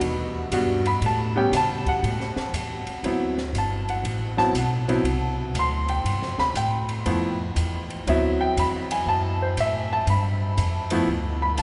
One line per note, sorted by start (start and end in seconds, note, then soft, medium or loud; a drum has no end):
0.01 0.50 E2 medium
0.01 ride medium
0.52 1.00 G2 loud
0.52 0.82 G3 medium
0.52 0.82 B3 medium
0.52 0.83 D4 medium
0.52 0.83 F#4 medium
0.52 hi-hat pedal medium
0.52 ride medium
0.85 1.02 B5 loud
0.85 ride medium
1.01 1.50 A2 medium
1.01 ride medium
1.06 1.37 A5 medium
1.36 1.51 G3 medium
1.36 1.51 B3 medium
1.36 1.51 C#4 medium
1.36 1.51 G4 medium
1.36 1.53 G5 medium
1.52 1.83 C#3 medium
1.52 snare soft
1.52 hi-hat pedal medium
1.52 ride medium
1.56 1.87 A5 loud
1.86 2.34 F#5 medium
1.86 muted upright bass stroke soft
1.86 kick medium
1.86 ride soft
2.03 2.34 A2 medium
2.03 ride medium
2.20 snare soft
2.36 muted upright bass stroke soft
2.36 snare soft
2.53 2.84 E2 medium
2.53 hi-hat pedal medium
2.53 ride medium
2.87 muted upright bass stroke soft
2.87 ride medium
3.03 3.52 D2 medium
3.03 3.34 F#3 medium
3.03 3.34 B3 medium
3.03 3.34 C4 medium
3.03 3.35 E4 medium
3.03 ride medium
3.38 snare soft
3.53 4.02 G1 medium
3.53 hi-hat pedal soft
3.53 ride medium
3.58 3.88 A5 medium
3.89 4.35 F#5 medium
3.89 ride soft
4.04 4.53 A1 medium
4.04 ride medium
4.37 4.52 F#3 medium
4.37 4.53 B3 medium
4.37 4.53 C4 medium
4.37 4.53 E4 medium
4.37 4.54 A5 loud
4.37 snare soft
4.53 5.02 B1 medium
4.53 hi-hat pedal medium
4.53 ride medium
4.58 4.89 F#5 medium
4.88 5.03 F#3 medium
4.88 5.03 B3 medium
4.88 5.03 C4 medium
4.88 5.04 E4 medium
4.88 ride medium
5.03 5.53 C2 medium
5.03 ride medium
5.54 6.03 D2 medium
5.54 hi-hat pedal medium
5.54 ride medium
5.59 5.89 C6 loud
5.88 6.36 G5 medium
5.88 ride soft
6.04 6.21 G2 medium
6.04 ride medium
6.21 6.37 F2 medium
6.21 snare soft
6.38 6.54 D2 medium
6.38 6.55 B5 loud
6.38 snare soft
6.54 7.04 A2 medium
6.54 6.76 G5 medium
6.54 hi-hat pedal medium
6.54 ride medium
6.89 ride soft
7.06 7.54 F2 medium
7.06 7.36 F3 medium
7.06 7.36 A3 medium
7.06 7.36 B3 medium
7.06 7.37 E4 medium
7.06 ride medium
7.56 8.05 E2 medium
7.56 hi-hat pedal medium
7.56 ride medium
7.90 ride soft
8.07 8.55 D2 medium
8.07 8.84 F#3 medium
8.07 8.84 B3 medium
8.07 8.84 C4 medium
8.07 8.84 E4 medium
8.07 8.40 E5 medium
8.07 ride medium
8.41 8.56 G5 loud
8.57 9.05 E2 medium
8.57 8.90 B5 loud
8.57 hi-hat pedal soft
8.57 ride medium
8.91 9.07 G#5 medium
8.91 ride medium
9.06 9.55 F#2 medium
9.06 9.40 A5 loud
9.42 9.58 C5 medium
9.57 10.06 A2 medium
9.57 9.91 E5 medium
9.57 hi-hat pedal medium
9.57 ride medium
9.93 10.08 A5 loud
10.07 10.56 G2 medium
10.07 10.88 B5 medium
10.07 ride medium
10.57 11.06 F2 medium
10.57 hi-hat pedal medium
10.57 ride medium
10.90 11.06 F3 medium
10.90 11.06 A3 medium
10.90 11.07 B3 medium
10.90 11.07 E4 medium
10.90 ride medium
11.08 11.56 D2 medium
11.42 11.58 B5 medium
11.57 11.62 B1 medium
11.57 11.62 A5 medium
11.57 hi-hat pedal medium
11.57 ride medium